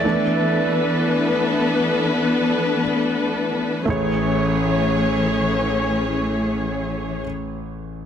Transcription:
Already playing: string section E3, grand piano A4 D5
0.04 grand piano E3 A3 D4, string section B3 D4 A4 B4
3.85 grand piano A1 A3 G#4, string section E3 A3 C#4 G#4 C#5
3.90 grand piano C#5

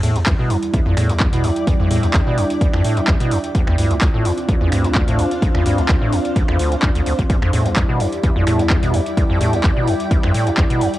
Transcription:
Already playing: analog synth pad G3 E4 D5, ambient pad E4
0.03 analog synth bass E2, acid bass A2, open hi-hat
0.16 acid bass E2, analog synth bass E2, closed hi-hat
0.20 ambient pad D5
0.26 acid bass E2, kick, clap, closed hi-hat
0.39 acid bass B2
0.50 acid bass F2, open hi-hat
0.62 closed hi-hat
0.73 acid bass E2, ambient pad G5, kick, closed hi-hat
0.86 analog synth bass E1, acid bass F2
0.97 analog synth bass E2, acid bass A2, finger snap, open hi-hat
1.09 acid bass E2, closed hi-hat
1.20 acid bass E2, kick, clap
1.33 acid bass B2, closed hi-hat
1.44 acid bass F2, open hi-hat
1.56 closed hi-hat
1.67 acid bass E2, analog synth pad D4, kick, closed hi-hat
1.80 acid bass F2
1.91 analog synth bass E2, acid bass A2, open hi-hat
2.03 analog synth bass E2, acid bass E2, closed hi-hat
2.14 acid bass E2, kick, clap, closed hi-hat
2.27 acid bass B2
2.38 acid bass F2, open hi-hat
2.50 closed hi-hat
2.61 acid bass E2, kick, closed hi-hat
2.73 acid bass F2, analog synth bass G2, finger snap
2.84 acid bass A2, open hi-hat
2.97 acid bass E2, closed hi-hat
3.07 acid bass E2, kick, clap
3.20 acid bass B2, closed hi-hat
3.31 acid bass F2, open hi-hat
3.44 closed hi-hat
3.55 acid bass D2, analog synth bass D2, analog synth pad C4 F4, ambient pad D4, kick, closed hi-hat
3.67 acid bass E2, finger snap
3.77 analog synth bass D2, acid bass G2, ambient pad C5, open hi-hat
3.91 analog synth bass D2, acid bass D2, closed hi-hat
4.01 acid bass D2, ambient pad F5, kick, clap, closed hi-hat
4.14 acid bass A2
4.25 acid bass E2, open hi-hat
4.38 closed hi-hat
4.49 acid bass D2, kick, closed hi-hat
4.61 analog synth bass D1, acid bass E2
4.72 analog synth bass D2, acid bass G2, finger snap, open hi-hat
4.84 acid bass D2, closed hi-hat
4.95 acid bass D2, kick, clap
5.08 acid bass A2, closed hi-hat
5.19 acid bass E2, open hi-hat
5.31 closed hi-hat
5.42 acid bass D2, kick, closed hi-hat
5.55 acid bass E2, finger snap
5.66 analog synth bass D2, acid bass G2, open hi-hat
5.78 acid bass D2, analog synth bass D2, closed hi-hat
5.89 acid bass D2, kick, clap, closed hi-hat
6.02 acid bass A2
6.13 acid bass E2, open hi-hat
6.25 closed hi-hat
6.36 acid bass D2, kick, closed hi-hat
6.48 acid bass E2, analog synth bass F2, finger snap
6.59 acid bass D2, open hi-hat
6.72 acid bass C2, closed hi-hat
6.82 acid bass E2, kick, clap
6.95 acid bass D2, closed hi-hat
7.06 acid bass D2, open hi-hat
7.19 acid bass D2, kick, closed hi-hat
7.30 analog synth bass E2, acid bass E2, analog synth pad G3 E4 D5, ambient pad E4, kick, closed hi-hat
7.42 acid bass F2, finger snap
7.53 analog synth bass E2, acid bass A2, open hi-hat
7.66 acid bass E2, analog synth bass E2, closed hi-hat
7.74 acid bass E2, ambient pad D5, kick, clap, closed hi-hat
7.89 acid bass B2
8.00 acid bass F2, open hi-hat
8.12 closed hi-hat
8.23 acid bass E2, kick, closed hi-hat
8.36 analog synth bass E1, acid bass F2, ambient pad G5
8.47 analog synth bass E2, acid bass A2, finger snap, open hi-hat
8.59 acid bass E2, closed hi-hat
8.70 acid bass E2, kick, clap
8.83 acid bass B2, closed hi-hat
8.94 acid bass F2, open hi-hat
9.06 closed hi-hat
9.17 acid bass E2, kick, closed hi-hat
9.30 acid bass F2
9.41 analog synth bass E2, acid bass A2, open hi-hat
9.53 acid bass E2, analog synth bass E2, closed hi-hat
9.64 acid bass E2, kick, clap, closed hi-hat
9.77 acid bass B2
9.88 acid bass F2, open hi-hat
10.00 closed hi-hat
10.11 acid bass E2, kick, closed hi-hat
10.23 acid bass F2, analog synth bass G2, finger snap
10.34 acid bass A2, open hi-hat
10.47 acid bass E2, closed hi-hat
10.57 acid bass E2, kick, clap
10.70 acid bass B2, closed hi-hat
10.81 acid bass F2, open hi-hat
10.94 closed hi-hat

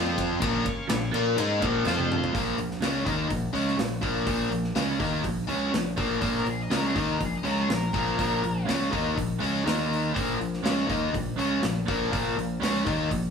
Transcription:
Already playing: picked electric bass F2, overdriven electric guitar F3 C4 F4, tonewheel organ C4 F4 C5
0.18 kick, ride
0.42 picked electric bass A#1, overdriven electric guitar A#2 F3 A#3, tonewheel organ A#3 C#4 F4 C#5, kick, ride
0.65 muted picked electric bass stroke, muted overdriven electric guitar stroke, kick, ride
0.89 picked electric bass A#1, overdriven electric guitar A#2 F3, snare, clap, ride
1.12 picked electric bass A#2, overdriven electric guitar A#3 F4 A#4, ride
1.16 overdriven electric guitar A#4
1.38 picked electric bass G#2, overdriven electric guitar G#3 D#4 G#4, ride
1.62 picked electric bass A#1, overdriven electric guitar A#2 F3 A#3, kick, ride
1.85 picked electric bass F2, overdriven electric guitar F3 C4 F4, tonewheel organ C4 F4 C5, snare, clap
1.99 high tom
2.12 mid tom
2.24 floor tom
2.34 picked electric bass A#1, overdriven electric guitar A#2 F3 A#3, kick, open hi-hat
2.57 picked electric bass A#1, overdriven electric guitar A#2 F3, open hi-hat
2.71 snare
2.82 picked electric bass C#2, overdriven electric guitar C#3 G#3 C#4, snare, open hi-hat
3.06 picked electric bass D#2, overdriven electric guitar D#3 A#3 D#4, kick, open hi-hat
3.29 picked electric bass A#1, overdriven electric guitar A#2 F3, kick, open hi-hat
3.53 picked electric bass C#2, overdriven electric guitar C#3 G#3 C#4, open hi-hat
3.68 snare
3.77 picked electric bass A#1, overdriven electric guitar A#2 F3, snare, open hi-hat
4.01 picked electric bass A#1, overdriven electric guitar A#2 F3 A#3, kick, open hi-hat
4.26 picked electric bass A#1, overdriven electric guitar A#2 F3 A#3, kick, open hi-hat
4.50 picked electric bass A#1, overdriven electric guitar A#2 F3, open hi-hat
4.64 snare
4.75 picked electric bass C#2, overdriven electric guitar C#3 G#3 C#4, snare, open hi-hat
4.99 picked electric bass D#2, overdriven electric guitar D#3 A#3 D#4, kick, open hi-hat
5.23 picked electric bass A#1, overdriven electric guitar A#2 F3, kick, open hi-hat
5.47 picked electric bass C#2, overdriven electric guitar C#3 G#3 C#4, open hi-hat
5.73 picked electric bass A#1, overdriven electric guitar A#2 F3, snare, open hi-hat
5.97 picked electric bass A#1, overdriven electric guitar A#2 F3 A#3, kick, open hi-hat
6.21 picked electric bass A#1, overdriven electric guitar A#2 F3 A#3, kick, open hi-hat
6.26 lead electric guitar D#5
6.38 lead electric guitar A#4
6.46 picked electric bass A#1, overdriven electric guitar A#2 F3, open hi-hat
6.50 lead electric guitar G#4
6.63 lead electric guitar D#5
6.70 picked electric bass C#2, overdriven electric guitar C#3 G#3 C#4, snare, open hi-hat
6.76 lead electric guitar A#4
6.87 lead electric guitar G#4
6.95 picked electric bass D#2, overdriven electric guitar D#3 A#3 D#4, kick, open hi-hat
6.99 lead electric guitar D#5
7.12 lead electric guitar A#4
7.19 picked electric bass A#1, overdriven electric guitar A#2 F3, kick, open hi-hat
7.25 lead electric guitar G#4
7.38 lead electric guitar D#5
7.43 picked electric bass C#2, overdriven electric guitar C#3 G#3 C#4, open hi-hat
7.50 lead electric guitar A#4
7.63 lead electric guitar G#4
7.69 picked electric bass A#1, overdriven electric guitar A#2 F3, snare, open hi-hat
7.74 lead electric guitar A#4
7.93 picked electric bass A#1, overdriven electric guitar A#2 F3 A#3, kick, open hi-hat
8.19 picked electric bass A#1, overdriven electric guitar A#2 F3 A#3, kick, open hi-hat
8.44 picked electric bass A#1, overdriven electric guitar A#2 F3, open hi-hat
8.68 picked electric bass C#2, overdriven electric guitar C#3 G#3 C#4, snare, open hi-hat
8.92 picked electric bass D#2, overdriven electric guitar D#3 A#3 D#4, kick, open hi-hat
9.16 picked electric bass A#1, overdriven electric guitar A#2 F3, kick, open hi-hat
9.40 picked electric bass C#2, overdriven electric guitar C#3 G#3 C#4, open hi-hat
9.66 picked electric bass D#2, overdriven electric guitar D#3 A#3 D#4, snare, open hi-hat
9.93 open hi-hat
10.14 picked electric bass A#1, overdriven electric guitar A#2 F3 A#3, kick, open hi-hat
10.39 picked electric bass A#1, overdriven electric guitar A#2 F3, open hi-hat
10.54 snare
10.64 picked electric bass C#2, overdriven electric guitar C#3 G#3 C#4, snare, open hi-hat
10.89 picked electric bass D#2, overdriven electric guitar D#3 A#3 D#4, kick, open hi-hat
11.14 picked electric bass A#1, overdriven electric guitar A#2 F3, kick, open hi-hat
11.38 picked electric bass C#2, overdriven electric guitar C#3 G#3 C#4, open hi-hat
11.62 picked electric bass A#1, overdriven electric guitar A#2 F3, snare, open hi-hat
11.88 picked electric bass A#1, overdriven electric guitar A#2 F3 A#3, kick, open hi-hat
12.12 picked electric bass A#1, overdriven electric guitar A#2 F3 A#3, kick, open hi-hat
12.36 picked electric bass A#1, overdriven electric guitar A#2 F3, open hi-hat
12.61 picked electric bass C#2, overdriven electric guitar C#3 G#3 C#4, snare, open hi-hat
12.85 picked electric bass D#2, overdriven electric guitar D#3 A#3 D#4, kick, open hi-hat
13.11 picked electric bass A#1, overdriven electric guitar A#2 F3, kick, open hi-hat

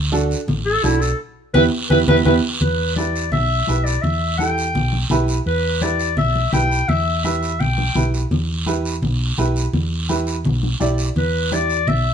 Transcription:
Already playing: fingered electric bass D2
0.12 upright piano D4 F#4 A4, high conga, short guiro
0.31 short guiro
0.48 fingered electric bass A1, low conga, long guiro
0.65 clarinet A4
0.83 fingered electric bass B1, upright piano D4 F#4 A4, clarinet E4, high conga, short guiro
1.01 clarinet A4, short guiro
1.54 fingered electric bass E2, upright piano B3 E4 G4, clarinet B4, low conga, long guiro
1.90 fingered electric bass E2, upright piano B3 E4 G4, clarinet B4, low conga
2.08 fingered electric bass E2, upright piano B3 E4 G4, clarinet B4, low conga, long guiro
2.25 fingered electric bass E2, upright piano B3 E4 G4, clarinet B4, low conga, long guiro
2.61 fingered electric bass E2, clarinet B4, low conga, long guiro
2.96 upright piano E4 G4 B4, clarinet D5, high conga, short guiro
3.16 short guiro
3.32 fingered electric bass B1, clarinet E5, low conga, long guiro
3.67 fingered electric bass B1, upright piano E4 G4 B4, high conga, short guiro
3.84 clarinet D5, short guiro
4.02 fingered electric bass E2, clarinet E5, low conga, long guiro
4.38 upright piano E4 G4 A4, clarinet G5, high conga, short guiro
4.58 short guiro
4.75 fingered electric bass B1, low conga, long guiro
4.93 high conga
5.10 fingered electric bass B1, upright piano E4 G4 B4, high conga, low conga, short guiro
5.28 short guiro
5.46 fingered electric bass E2, clarinet B4, long guiro
5.81 upright piano E4 G4 B4, clarinet D5, high conga, short guiro
5.99 short guiro
6.17 fingered electric bass B1, clarinet E5, low conga, long guiro
6.35 high conga
6.53 fingered electric bass B1, upright piano E4 G4 B4, clarinet G5, high conga, low conga, short guiro
6.72 short guiro
6.89 fingered electric bass E2, clarinet E5, low conga, long guiro
7.24 upright piano E4 G4 B4, clarinet E5, high conga, short guiro
7.43 short guiro
7.60 fingered electric bass B1, clarinet G5, low conga, long guiro
7.78 high conga
7.95 fingered electric bass B1, upright piano E4 G4 B4, high conga, low conga, short guiro
8.14 short guiro
8.31 fingered electric bass E2, low conga, long guiro
8.66 upright piano E4 G4 B4, high conga, short guiro
8.85 short guiro
9.02 fingered electric bass B1, low conga, long guiro
9.38 fingered electric bass B1, upright piano E4 G4 B4, high conga, short guiro
9.56 short guiro
9.73 fingered electric bass E2, low conga, long guiro
10.09 upright piano E4 G4 B4, high conga, short guiro
10.27 short guiro
10.45 fingered electric bass B1, low conga, long guiro
10.63 high conga
10.80 fingered electric bass B1, upright piano E4 G4 D5, high conga, short guiro
10.98 short guiro
11.16 fingered electric bass E2, clarinet B4, low conga, long guiro
11.52 upright piano E4 G4 D5, clarinet D5, high conga, short guiro
11.70 short guiro
11.87 fingered electric bass B1, clarinet E5, low conga, long guiro

